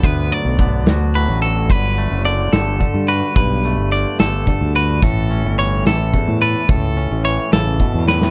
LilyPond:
<<
  \new Staff \with { instrumentName = "Clean electric guitar" } { \time 6/8 \key g \lydian \tempo 4. = 72 b'8 d''4 r8 b'8 a'8 | b'4 d''8 a'4 b'8 | b'4 d''8 a'4 b'8 | a'4 cis''8 a'4 b'8 |
a'4 cis''8 a'4 b'8 | }
  \new Staff \with { instrumentName = "Clean electric guitar" } { \clef bass \time 6/8 \key g \lydian << { b8 fis8 b8 fis'8 fis4~ | fis8 a2 fis'8 | r8 a2 fis'8 | r8 cis'2 a'8 |
r8 cis'2~ cis'8 | } \\ { <d, d>4 d4 a,4 | r4 d4 d4 | g,4 d4 d4 | a,4 e4 e,4 |
a,4 e8 cis8 b,8 a,8 | } >> }
  \new Staff \with { instrumentName = "Fingered electric bass" } { \clef bass \time 6/8 \key g \lydian d,8 r16 b,,8. d,8. a,,8. | g,,8. fis,,8. g,,8 r16 g,8 r16 | b,,8. g,,8 r16 g,,8 r16 d,8. | a,,8. g,,8. a,,8 r16 a,8 r16 |
cis,8. a,,8 r16 a,,8 r16 e,8. | }
  \new DrumStaff \with { instrumentName = "Drums" } \drummode { \time 6/8 <hh bd>8 hh8 <hh bd>8 <hh sn>8 hh8 hh8 | <hh bd>8 hh8 hh8 <hh sn>8 <hh bd>8 hh8 | <hh bd>8 hh8 hh8 <hh sn>8 <hh bd>8 hh8 | <hh bd>8 hh8 hh8 <hh sn>8 <hh bd>8 hh8 |
<hh bd>8 hh8 hh8 <hh sn>8 <hh bd>8 sn16 sn16 | }
>>